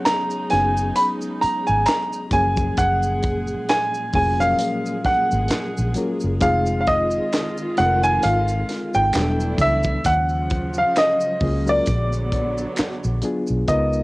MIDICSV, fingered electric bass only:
0, 0, Header, 1, 3, 480
1, 0, Start_track
1, 0, Tempo, 909091
1, 1465, Time_signature, 4, 2, 24, 8
1, 7409, End_track
2, 0, Start_track
2, 0, Title_t, "Fingered electric bass"
2, 0, Program_c, 0, 33
2, 278, Note_on_c, 0, 30, 102
2, 476, Note_off_c, 0, 30, 0
2, 893, Note_on_c, 0, 32, 72
2, 977, Note_off_c, 0, 32, 0
2, 1225, Note_on_c, 0, 30, 104
2, 1428, Note_off_c, 0, 30, 0
2, 1471, Note_on_c, 0, 30, 104
2, 1875, Note_off_c, 0, 30, 0
2, 2189, Note_on_c, 0, 29, 90
2, 2391, Note_off_c, 0, 29, 0
2, 2812, Note_on_c, 0, 32, 83
2, 2896, Note_off_c, 0, 32, 0
2, 3055, Note_on_c, 0, 34, 70
2, 3137, Note_off_c, 0, 34, 0
2, 3294, Note_on_c, 0, 30, 87
2, 3377, Note_off_c, 0, 30, 0
2, 3391, Note_on_c, 0, 29, 102
2, 3795, Note_off_c, 0, 29, 0
2, 4115, Note_on_c, 0, 29, 98
2, 4314, Note_off_c, 0, 29, 0
2, 4357, Note_on_c, 0, 32, 99
2, 4555, Note_off_c, 0, 32, 0
2, 4730, Note_on_c, 0, 32, 72
2, 4814, Note_off_c, 0, 32, 0
2, 4833, Note_on_c, 0, 28, 81
2, 5033, Note_off_c, 0, 28, 0
2, 5064, Note_on_c, 0, 37, 94
2, 5268, Note_off_c, 0, 37, 0
2, 5310, Note_on_c, 0, 39, 96
2, 5714, Note_off_c, 0, 39, 0
2, 6029, Note_on_c, 0, 37, 94
2, 6231, Note_off_c, 0, 37, 0
2, 6275, Note_on_c, 0, 34, 106
2, 6677, Note_off_c, 0, 34, 0
2, 6889, Note_on_c, 0, 34, 81
2, 6974, Note_off_c, 0, 34, 0
2, 7130, Note_on_c, 0, 35, 77
2, 7215, Note_off_c, 0, 35, 0
2, 7230, Note_on_c, 0, 37, 95
2, 7409, Note_off_c, 0, 37, 0
2, 7409, End_track
3, 0, Start_track
3, 0, Title_t, "Muted fingered electric bass strokes"
3, 758, Note_on_c, 9, 29, 44
3, 811, Note_off_c, 9, 29, 0
3, 2671, Note_on_c, 9, 29, 51
3, 2724, Note_off_c, 9, 29, 0
3, 2918, Note_on_c, 9, 29, 41
3, 2971, Note_off_c, 9, 29, 0
3, 6755, Note_on_c, 9, 29, 39
3, 6808, Note_off_c, 9, 29, 0
3, 7409, End_track
0, 0, End_of_file